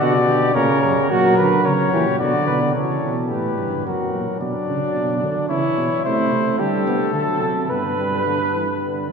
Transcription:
0.00 euphonium B2, tuba D3, flugelhorn F#4, cornet D5
0.28 tuba D3, flugelhorn G4
0.54 tuba A#2, euphonium C#3, flugelhorn A#4, cornet C#5
0.82 tuba F#2, flugelhorn A#4
1.09 tuba A#2, euphonium F#3, flugelhorn F#4, cornet A#4
1.37 tuba D3, flugelhorn B4
1.64 tuba C#3, flugelhorn A#4, cornet C#5
1.93 tuba A#2, euphonium E3, flugelhorn G4
2.19 tuba B2, euphonium D3, flugelhorn F#4, cornet D5
2.47 tuba B2, flugelhorn B4
2.74 tuba C#3, euphonium E3, flugelhorn A4, cornet C#5
3.04 tuba B2
3.29 tuba A2, flugelhorn G4, cornet B4
3.59 tuba G2
3.85 tuba F#2, euphonium F#3, flugelhorn F#4, cornet A#4
4.14 tuba A#2
4.39 tuba B2, euphonium F#3, flugelhorn D4, cornet D5
4.69 tuba C#3
4.96 tuba B2
5.24 tuba D3
5.49 tuba C#3, euphonium E3, flugelhorn E4, cornet C#5
5.77 tuba B2
6.04 tuba C3, euphonium A3, flugelhorn E4, cornet C5
6.32 tuba C3
6.58 tuba D3, euphonium G3, flugelhorn G4, cornet A4
6.87 euphonium B3
7.14 tuba D3, euphonium F#3, flugelhorn A4
7.42 tuba C3
7.68 tuba G2, euphonium B3, cornet B4, flugelhorn B4
7.98 euphonium G3
8.26 euphonium D3
8.54 euphonium E3
8.82 euphonium D3

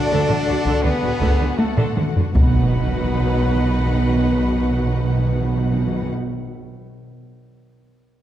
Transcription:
Already playing: trombone section F#3 A3, string section A3 F#4 F#5, french horn section D4, trumpet D4, violin section A4 F#5, flute D5
0.11 double bass section D2, cello section D3, viola section A4
0.29 cello section D3, viola section D4, taiko low-mid
0.47 double bass section D2, cello section D3, viola section F#4
0.65 cello section D3, viola section A4, taiko
0.82 double bass section D2, cello section D3, trumpet B3, french horn section B3, viola section D4, violin section G#4, flute B4
1.02 cello section D3, viola section F#4, taiko low-mid
1.21 double bass section D2, cello section D3, viola section A4, taiko
1.40 cello section D3, viola section D4
1.56 trumpet A3, french horn section A3, violin section F#4, flute A4, taiko high
1.77 cello section D3, viola section A4, taiko low-mid
1.96 double bass section D2, cello section D3, viola section D4, taiko mid
2.16 cello section D3, viola section F#4, taiko low
2.34 double bass section B1, timpani B2, cello section B2, trombone section D#3 F#3, french horn section B3, string section D#4 F#4 B4 F#5, trumpet B4, viola section B4, violin section D#5 F#5, flute B5, taiko, impact
2.41 timpani B2
2.49 timpani B2
2.56 timpani B2
2.64 timpani B2
2.72 timpani B2
2.80 timpani B2
2.88 timpani B2
2.95 timpani B2
3.03 timpani B2
3.11 timpani B2
3.18 timpani B2
3.25 timpani B2
3.33 timpani B2
3.41 timpani B2
3.48 timpani B2
3.56 timpani B2
3.64 timpani B2
3.71 timpani B2
3.79 timpani B2
3.86 timpani B2
3.94 timpani B2
4.01 timpani B2
4.09 timpani B2
4.16 timpani B2
4.24 timpani B2
4.32 timpani B2
4.40 timpani B2
4.48 timpani B2
4.55 timpani B2
4.63 timpani B2
4.71 timpani B2
4.79 timpani B2
4.86 timpani B2
4.94 timpani B2
5.02 timpani B2
5.10 timpani B2
5.17 timpani B2
5.25 timpani B2
5.33 timpani B2
5.41 timpani B2
5.48 timpani B2
5.56 timpani B2
5.64 timpani B2
5.71 timpani B2
5.79 timpani B2
5.87 timpani B2
5.94 timpani B2
6.02 timpani B2

